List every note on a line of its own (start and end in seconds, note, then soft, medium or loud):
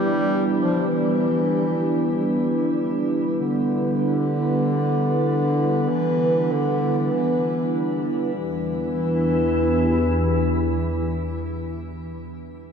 0.00 0.51 G3 medium
0.00 8.48 G3 medium
0.00 8.36 B3 medium
0.00 8.37 D4 medium
0.00 8.37 E4 medium
0.00 0.60 G4 medium
0.00 8.40 G4 medium
0.55 0.84 F3 medium
0.55 8.43 B4 medium
0.87 2.70 E3 medium
3.37 5.90 D3 medium
5.89 6.53 E3 loud
6.52 7.14 D3 medium
7.12 8.05 E3 medium
8.36 11.45 E2 medium
8.36 11.45 E3 medium
8.36 11.46 B3 medium
8.56 11.64 D4 medium
8.75 11.84 E4 medium
8.94 12.02 G4 medium